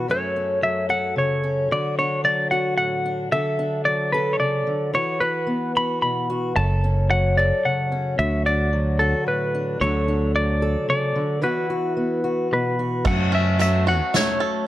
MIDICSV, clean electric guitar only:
0, 0, Header, 1, 2, 480
1, 0, Start_track
1, 0, Tempo, 540541
1, 78, Time_signature, 3, 2, 24, 8
1, 13027, End_track
2, 0, Start_track
2, 0, Title_t, "Clean electric guitar"
2, 0, Program_c, 0, 27
2, 0, Note_on_c, 0, 71, 55
2, 94, Note_off_c, 0, 71, 0
2, 97, Note_on_c, 0, 73, 65
2, 534, Note_off_c, 0, 73, 0
2, 562, Note_on_c, 0, 76, 67
2, 796, Note_off_c, 0, 76, 0
2, 799, Note_on_c, 0, 78, 71
2, 1045, Note_off_c, 0, 78, 0
2, 1051, Note_on_c, 0, 73, 62
2, 1490, Note_off_c, 0, 73, 0
2, 1530, Note_on_c, 0, 74, 69
2, 1760, Note_off_c, 0, 74, 0
2, 1764, Note_on_c, 0, 73, 64
2, 1983, Note_off_c, 0, 73, 0
2, 1996, Note_on_c, 0, 74, 75
2, 2225, Note_off_c, 0, 74, 0
2, 2228, Note_on_c, 0, 78, 73
2, 2454, Note_off_c, 0, 78, 0
2, 2464, Note_on_c, 0, 78, 69
2, 2947, Note_off_c, 0, 78, 0
2, 2950, Note_on_c, 0, 76, 77
2, 3398, Note_off_c, 0, 76, 0
2, 3420, Note_on_c, 0, 74, 81
2, 3649, Note_off_c, 0, 74, 0
2, 3663, Note_on_c, 0, 71, 74
2, 3846, Note_on_c, 0, 73, 55
2, 3851, Note_off_c, 0, 71, 0
2, 3901, Note_off_c, 0, 73, 0
2, 3904, Note_on_c, 0, 74, 71
2, 4390, Note_off_c, 0, 74, 0
2, 4394, Note_on_c, 0, 73, 71
2, 4622, Note_on_c, 0, 71, 75
2, 4640, Note_off_c, 0, 73, 0
2, 5072, Note_off_c, 0, 71, 0
2, 5123, Note_on_c, 0, 83, 81
2, 5338, Note_off_c, 0, 83, 0
2, 5348, Note_on_c, 0, 83, 77
2, 5824, Note_off_c, 0, 83, 0
2, 5828, Note_on_c, 0, 81, 82
2, 6275, Note_off_c, 0, 81, 0
2, 6309, Note_on_c, 0, 78, 83
2, 6533, Note_off_c, 0, 78, 0
2, 6549, Note_on_c, 0, 74, 77
2, 6796, Note_on_c, 0, 78, 74
2, 6797, Note_off_c, 0, 74, 0
2, 7240, Note_off_c, 0, 78, 0
2, 7271, Note_on_c, 0, 76, 79
2, 7494, Note_off_c, 0, 76, 0
2, 7513, Note_on_c, 0, 74, 75
2, 7985, Note_on_c, 0, 69, 71
2, 8006, Note_off_c, 0, 74, 0
2, 8211, Note_off_c, 0, 69, 0
2, 8239, Note_on_c, 0, 71, 67
2, 8682, Note_off_c, 0, 71, 0
2, 8714, Note_on_c, 0, 73, 72
2, 9192, Note_off_c, 0, 73, 0
2, 9196, Note_on_c, 0, 74, 74
2, 9667, Note_off_c, 0, 74, 0
2, 9678, Note_on_c, 0, 74, 64
2, 10122, Note_off_c, 0, 74, 0
2, 10154, Note_on_c, 0, 71, 61
2, 11079, Note_off_c, 0, 71, 0
2, 11130, Note_on_c, 0, 71, 58
2, 11607, Note_on_c, 0, 78, 81
2, 11617, Note_off_c, 0, 71, 0
2, 11848, Note_off_c, 0, 78, 0
2, 11852, Note_on_c, 0, 76, 74
2, 12067, Note_off_c, 0, 76, 0
2, 12090, Note_on_c, 0, 76, 79
2, 12326, Note_off_c, 0, 76, 0
2, 12329, Note_on_c, 0, 78, 83
2, 12569, Note_off_c, 0, 78, 0
2, 12577, Note_on_c, 0, 73, 71
2, 13014, Note_off_c, 0, 73, 0
2, 13027, End_track
0, 0, End_of_file